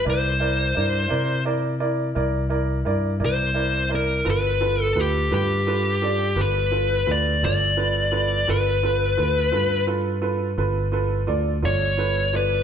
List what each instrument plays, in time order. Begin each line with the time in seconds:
0.05 fingered electric bass C2, upright piano E4 A#4 D5
0.10 lead electric guitar C5
0.40 upright piano E4 A#4 D5
0.75 fingered electric bass G2, upright piano E4 A#4 D5
1.09 fingered electric bass C3, upright piano E4 A#4 D5
1.45 upright piano E4 A#4 D5
1.80 upright piano E4 A#4 D5
2.15 fingered electric bass C2, upright piano E4 A#4 D5
2.50 upright piano E4 A#4 D5
2.85 fingered electric bass G2, upright piano E4 A#4 D5
3.20 fingered electric bass C2, upright piano E4 A#4 D5
3.25 lead electric guitar C5
3.54 upright piano E4 A#4 D5
3.89 upright piano E4 A#4 D5
3.95 lead electric guitar A#4
4.25 fingered electric bass G1, upright piano F4 A4 B4
4.30 lead electric guitar B4
4.61 upright piano F4 A4 B4
4.82 lead electric guitar A4
4.96 fingered electric bass D2, upright piano F4 A4 B4
5.00 lead electric guitar G4
5.31 fingered electric bass G2, upright piano F4 A4 B4, lead electric guitar G4
5.67 upright piano F4 A4 B4
6.02 upright piano F4 A4 D5
6.36 fingered electric bass G1, upright piano F4 A4 B4
6.41 lead electric guitar B4
6.71 upright piano F4 A4 B4
7.07 fingered electric bass D2, upright piano F4 A4 B4
7.11 lead electric guitar D5
7.43 fingered electric bass G1, upright piano F4 A4 D5, lead electric guitar D5
7.77 upright piano F4 A4 B4
8.12 upright piano F4 A4 B4
8.47 fingered electric bass G1, upright piano F4 A4 B4, lead electric guitar B4
8.83 upright piano F4 A4 B4
9.17 fingered electric bass D2, upright piano F4 A4 B4
9.52 fingered electric bass G2, upright piano F4 A4 B4
9.87 upright piano F4 A4 B4
10.22 upright piano F4 A4 B4
10.58 fingered electric bass G1, upright piano F4 A4 B4
10.92 upright piano F4 A4 B4
11.27 fingered electric bass D2, upright piano F4 A4 D5
11.63 fingered electric bass G1, upright piano F4 A4 D5, lead electric guitar C#5
11.97 upright piano F4 A4 B4
12.33 upright piano F4 A4 D5, lead electric guitar B4